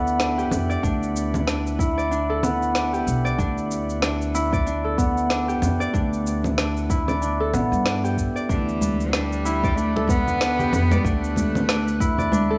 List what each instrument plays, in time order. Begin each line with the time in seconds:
Already playing: upright bass D2, harp B3 D4 E4 G4 A4 D5, synth texture B3 E4
0.07 shaker
0.19 harp D4, snare, shaker
0.38 harp G4, shaker
0.51 upright bass F2, low conga, shaker
0.69 harp D5, shaker
0.83 upright bass D2, harp D4, kick, shaker
1.03 shaker
1.16 shaker
1.34 low conga, shaker
1.47 harp D4, snare, shaker
1.67 shaker
1.79 harp E4, kick, shaker
1.98 harp D5, shaker
2.11 harp D4, shaker
2.30 harp A4
2.43 harp B3, low conga, shaker
2.63 shaker
2.75 harp D4, snare, shaker
2.93 harp G4, shaker
3.07 upright bass B1, shaker
3.25 harp D5, shaker
3.38 upright bass D2, harp D4, kick, shaker
3.58 shaker
3.71 shaker
3.90 shaker
4.02 harp D4, snare, shaker
4.22 shaker
4.35 harp E4, shaker
4.53 harp D5, kick, shaker
4.66 harp D4, shaker
4.84 harp A4
4.98 harp B3, kick, shaker
5.17 shaker
5.30 harp D4, snare, shaker
5.48 harp G4, shaker
5.62 upright bass F2, low conga, shaker
5.80 harp D5, shaker
5.93 upright bass D2, harp D4, kick, shaker
6.13 shaker
6.27 shaker
6.44 low conga, shaker
6.58 harp D4, snare, shaker
6.77 shaker
6.90 harp E4, kick, shaker
7.08 harp D5, low conga, shaker
7.22 harp D4, shaker
7.40 harp A4
7.53 upright bass A1, harp B3, low conga, shaker
7.72 upright bass G2, shaker
7.85 harp D4, snare, shaker
8.04 harp G4, shaker
8.18 kick, shaker
8.36 harp D5, shaker
8.49 upright bass D2, cello E3, synth texture A3 B4, harp D4, kick, shaker
8.69 shaker
8.81 high conga, shaker
9.01 shaker
9.13 cello G3, harp D4, snare, shaker
9.33 shaker
9.45 harp E4, shaker
9.64 harp D5, kick, shaker
9.77 cello A3, harp D4, shaker
9.96 harp A4, muted conga
10.08 cello B3, harp B3, kick, high conga, shaker
10.28 low conga, shaker
10.41 harp D4, snare, shaker
10.59 harp G4, low conga, shaker
10.73 upright bass F2, low conga, shaker
10.91 harp D5, muted conga, high conga, shaker
11.03 upright bass D2, cello A3, harp D4, kick, shaker
11.24 shaker
11.36 high conga, low conga, shaker
11.55 low conga, shaker
11.68 harp D4, snare, shaker
11.88 shaker
12.00 harp E4, kick, shaker
12.18 harp D5, low conga, shaker
12.32 harp D4, high conga, shaker
12.50 harp A4